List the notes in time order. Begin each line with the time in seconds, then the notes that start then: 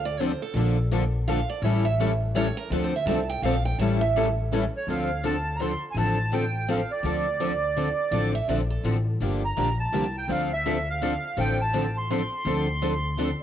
Already playing: D2
0.05 D5
0.20 D3 F3 C4 D4 A4 C5
0.42 A4
0.54 A#1 D3 F3 A#3 D4 A4
0.91 D3 F3 A#3 D4 A4
1.28 D3 F3 A#3 D4 A4 F5
1.50 D5
1.62 A1 E3 G3 C#4 E4 A4 C#5
1.85 E5
2.00 E3 G3 C#4 E4 A4
2.35 E3 G3 C#4 E4 A4 C#5
2.57 A#4
2.70 D2 D3 F3 C4 D4 A4
2.84 C5
2.96 E5
3.06 C2 D3 F3 C4 D4 A4 A5
3.30 G5
3.42 A#1 D3 F3 C4 D4 A4 F5
3.65 G5
3.78 A1 E3 G3 C#4 E4 A4 A5
4.01 E5
4.16 E3 G3 C#4 E4 A4
4.53 E3 G3 C#4 E4 A4
4.77 C#5
4.87 D2 D3 F3 C4 D4 A4 F5
5.24 D3 F3 C4 D4 A4 A5
5.56 D3 A#5
5.60 F3 C4 D4 A4 C6
5.91 A1 G#5
5.97 D3 F3 C4 D4 A4 A5
6.32 D3 F3 C4 D4 A4 G5
6.69 D3 F3 C4 D4 A4 F5
6.91 D5
7.03 D2 D3 F3 C4 D4 A4
7.40 D3 F3 C4 D4 A4
7.77 D3 F3 C4 D4 A4
8.11 A1 D3 F3 C4 D4 A4 D5
8.35 E5
8.48 A#1 D3 F3 C4 D4 A4 D5
8.70 A4
8.83 A1 D3 F3 C4 D4 A4
9.20 G1 D3 F3 A#3 D4 G4
9.45 A#5
9.57 A#1 D3 F3 A#3 D4 G4
9.80 A5
9.92 C2 D3 F3 A#3 D4 G4
10.18 G5
10.28 D2 D3 F3 C4 D4 A4 F5
10.53 E5
10.66 D3 F3 C4 D4 A4
10.90 F5
11.02 D3 F3 C4 D4 A4
11.37 A1 D3 F3 C4 D4 A4 G5
11.61 A5
11.73 D3 F3 C4 D4 A4
11.97 C6
12.10 D3 F3 C4 D4 A4 C6
12.45 D2 D3 F3 C4 D4 A4
12.82 D3 F3 C4 D4 A4
13.18 D3 F3 C4 D4 A4